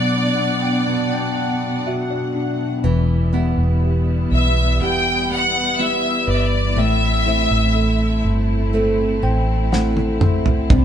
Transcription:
Already playing: tine electric piano B2 F#3 B3, string section B2 B3 D4 F#4 F#5, violin section D5
0.38 tine electric piano D4 F#5
0.62 tine electric piano G5
0.87 tine electric piano B3 A5
1.12 tine electric piano G5
1.36 tine electric piano F#5
1.87 tine electric piano F#4 E5
2.10 tine electric piano D5
2.35 tine electric piano D4
2.84 fingered electric bass E1, nylon-string guitar E3, tine electric piano E3, string section G3 B3 E4
3.33 nylon-string guitar G3 B3 E4, tine electric piano B3
3.58 fingered electric bass E1
3.83 tine electric piano G4
4.31 fingered electric bass B1, tine electric piano B4, violin section E5
4.80 fingered electric bass E1, nylon-string guitar G3 B3 E4, tine electric piano G4, violin section G5
5.30 nylon-string guitar B3, tine electric piano B4, violin section F#5
5.79 nylon-string guitar G3 B3 E4, tine electric piano B3, violin section E5
6.27 fingered electric bass G1, tine electric piano B4, violin section D5
6.36 violin section E5
6.43 violin section D5
6.76 fingered electric bass A1, nylon-string guitar A2, tine electric piano A3, string section A3 C4, violin section E5
7.26 nylon-string guitar A3 C4 E4, tine electric piano E4
7.51 fingered electric bass A1
7.75 tine electric piano A4
8.24 fingered electric bass G1, tine electric piano C5
8.73 nylon-string guitar A3 C4 E4, tine electric piano A4
9.22 fingered electric bass A1, nylon-string guitar C4, tine electric piano C5 G5
9.72 nylon-string guitar A3 C4 E4, tine electric piano E4 F#5, snare
9.97 high tom
10.21 tine electric piano C5 E5, mid tom
10.46 floor tom
10.70 fingered electric bass C2, nylon-string guitar C3, string section C3 D4 G4, tine electric piano C4, kick, floor tom

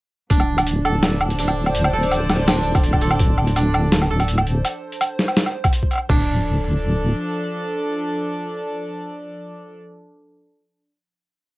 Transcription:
0.30 wobble bass D1, string section F3, koto D4, synth texture C5, kick, closed hi-hat
0.40 low woodblock
0.56 string section D4, closed hi-hat, low woodblock
0.67 closed hi-hat
0.74 string section A4
0.85 koto A4, string section D5, low woodblock
1.03 snare, closed hi-hat, low woodblock
1.21 wobble bass D1, low woodblock
1.30 closed hi-hat
1.39 koto D4, closed hi-hat
1.48 low woodblock
1.66 low woodblock
1.75 wobble bass D1, closed hi-hat
1.84 low woodblock
1.93 wobble bass D1, koto A4
2.03 closed hi-hat
2.11 closed hi-hat, low woodblock
2.29 snare, low woodblock
2.48 koto D4, snare, closed hi-hat, low woodblock
2.75 kick, closed hi-hat, low woodblock
2.84 closed hi-hat
2.93 kick, low woodblock
3.01 koto A4, closed hi-hat
3.11 low woodblock
3.19 wobble bass D1, kick, closed hi-hat
3.38 wobble bass D1, low woodblock
3.47 closed hi-hat
3.56 koto D4, closed hi-hat, low woodblock
3.74 low woodblock
3.92 snare, closed hi-hat
4.02 low woodblock
4.11 koto A4
4.20 closed hi-hat, low woodblock
4.28 closed hi-hat
4.38 low woodblock
4.47 closed hi-hat
4.65 closed hi-hat, low woodblock
4.92 closed hi-hat
5.01 closed hi-hat, low woodblock
5.19 snare
5.28 low woodblock
5.37 snare, closed hi-hat
5.46 low woodblock
5.64 kick, closed hi-hat, low woodblock
5.73 closed hi-hat
5.83 kick
5.91 closed hi-hat, low woodblock
5.93 low woodblock
5.95 low woodblock
5.98 low woodblock
6.09 wobble bass D1, string section F3, koto D4, kick, floor tom, crash
6.15 string section D4
6.21 string section A4
6.26 string section D5

